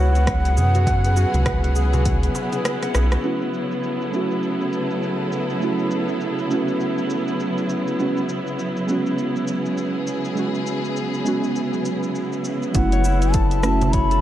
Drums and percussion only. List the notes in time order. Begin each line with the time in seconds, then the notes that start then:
0.15 closed hi-hat, shaker
0.27 kick, cross-stick, closed hi-hat, shaker
0.45 closed hi-hat, shaker
0.57 darbuka dum, shaker
0.75 closed hi-hat, darbuka tek, shaker
0.87 kick, closed hi-hat, darbuka tek, shaker
1.05 closed hi-hat, shaker
1.17 darbuka ka, shaker
1.34 closed hi-hat, darbuka ka, darbuka dum, shaker
1.46 kick, cross-stick, closed hi-hat, shaker
1.64 closed hi-hat
1.76 shaker
1.93 closed hi-hat, darbuka ka, darbuka dum, shaker
2.05 kick, closed hi-hat, shaker
2.23 closed hi-hat, shaker
2.35 darbuka tek, shaker
2.53 closed hi-hat, shaker
2.65 cross-stick, closed hi-hat, shaker
2.83 cross-stick, closed hi-hat, shaker
2.95 cross-stick, darbuka tek, shaker
3.12 cross-stick, closed hi-hat, shaker
3.24 shaker
3.42 shaker
3.54 shaker
3.71 shaker
3.83 shaker
4.01 shaker
4.13 shaker
4.31 shaker
4.43 shaker
4.61 shaker
4.73 shaker
4.91 shaker
5.03 shaker
5.32 shaker
5.50 shaker
5.62 shaker
5.79 shaker
5.91 shaker
6.08 shaker
6.21 shaker
6.39 shaker
6.51 shaker
6.68 shaker
6.80 shaker
6.98 shaker
7.10 shaker
7.28 shaker
7.40 shaker
7.58 shaker
7.69 shaker
7.88 shaker
8.00 shaker
8.17 shaker
8.29 shaker
8.47 shaker
8.59 shaker
8.77 shaker
8.88 shaker
9.06 shaker
9.18 shaker
9.36 shaker
9.48 shaker
9.66 shaker
9.78 shaker
10.07 shaker
10.25 shaker
10.37 shaker
10.55 shaker
10.67 shaker
10.84 shaker
10.96 shaker
11.14 shaker
11.26 shaker
11.44 shaker
11.56 shaker
11.74 shaker
11.85 shaker
12.03 shaker
12.15 shaker
12.33 shaker
12.45 shaker
12.63 shaker
12.75 kick, closed hi-hat, darbuka ka, darbuka tek, shaker
12.92 closed hi-hat, shaker
13.04 shaker
13.22 closed hi-hat, shaker
13.34 kick, closed hi-hat, shaker
13.51 closed hi-hat, shaker
13.63 cross-stick, shaker
13.81 closed hi-hat, darbuka ka, darbuka dum, shaker
13.93 kick, closed hi-hat, shaker
14.11 closed hi-hat, shaker